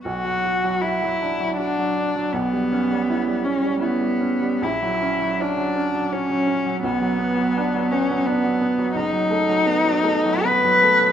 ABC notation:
X:1
M:3/4
L:1/16
Q:1/4=82
K:Bm
V:1 name="Cello"
F4 E4 D4 | B,6 C2 B,4 | E4 D4 C4 | B,6 C2 B,4 |
[K:Bphr] ^D8 B4 |]
V:2 name="Grand piano" clef=bass
B,,, F, F F, F F, D F, F F, D F, | B,,, G, C G, E G, C G, E G, C G, | ^A,,, F, C F, C F, C F, C F, C F, | B,,, F, B, F, D F, B, F, D F, B, F, |
[K:Bphr] F,,, F, A, F, B, F, A, F, B, F, A, F, |]